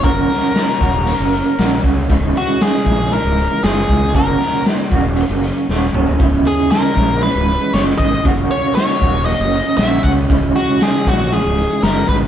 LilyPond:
<<
  \new Staff \with { instrumentName = "Lead electric guitar" } { \time 4/4 \key cis \dorian \tempo 4 = 117 ais'2.~ ais'8 r8 | r8 fis'8 gis'4 ais'4 gis'4 | ais'4 r2. | r8 gis'8 ais'4 b'4 cis''8 dis''8 |
r8 cis''8 cis''4 dis''4 e''8 fis''8 | r8 fis'8 gis'8 fis'8 gis'4 ais'8 b'8 | }
  \new Staff \with { instrumentName = "String section" } { \clef bass \time 4/4 \key cis \dorian << { cis'1~ | cis'1 | cis'1~ | cis'1 |
cis'1~ | cis'1 | } \\ { <fis ais>1 | <e gis>1 | <fis ais>1 | <e gis>1 |
<fis ais>1 | <e gis>1 | } >> }
  \new Staff \with { instrumentName = "Clean electric guitar" } { \clef bass \time 4/4 \key cis \dorian <fis, cis fis ais cis' fis'>4. <fis, cis fis ais cis' fis'>4. <fis, cis fis ais cis' fis'>4 | <cis, gis, cis gis e'>4. <cis, gis, cis gis e'>4. <cis, gis, cis gis e'>4 | <fis, cis fis ais cis' fis'>4. <fis, cis fis ais cis' fis'>4. <fis, cis fis ais cis' fis'>4 | <cis, gis, cis gis e'>4. <cis, gis, cis gis e'>4. <cis, cis gis e'>4 |
<fis, cis fis ais cis' fis'>4. <fis, cis fis ais cis' fis'>4. <fis, cis fis ais cis' fis'>4 | <cis, gis, cis gis e'>4. <cis, gis, cis gis e'>4. <cis, gis, cis gis e'>4 | }
  \new Staff \with { instrumentName = "Fingered electric bass" } { \clef bass \time 4/4 \key cis \dorian fis,,8 r4 dis,,8. fis,,8 r16 ais,,8 cis,8 | cis,,8 r4 ais,,8. cis,,8 r16 fis,,8 cis,8 | fis,,8 r4 dis,,8. fis,,8 r16 dis,,8 cis,,8 | cis,,8 r4 ais,,8. cis,,8 r16 fis,,8 gis,,8 |
fis,,8 r4 dis,,8. fis,,8 r16 ais,,8 cis,8 | cis,,8 r4 ais,,8. cis,,8 r16 fis,,8 gis,,8 | }
  \new DrumStaff \with { instrumentName = "Drums" } \drummode { \time 4/4 <hh bd>8 <hh sn>8 <hh sn>8 <hh bd>8 hh8 hh8 <hh sn>8 <hh bd>8 | <hh bd>8 hh8 <hh sn>8 <hh bd>8 hh8 hh8 <hh sn>8 <hh bd>8 | <hh bd>8 <hh sn>8 <hh sn>8 <hh bd>8 hh8 hh8 sn8 toml16 tomfh16 | <hh bd>8 hh8 <hh sn>8 <hh bd>8 hh8 hh8 <hh sn>8 <hh bd>8 |
<hh bd>8 hh8 <hh sn>8 <hh bd>8 hh8 hh8 <hh sn>8 <hh bd>8 | <hh bd>8 hh8 <hh sn>8 <hh bd>8 hh8 hh8 <hh sn>8 <hh bd>8 | }
>>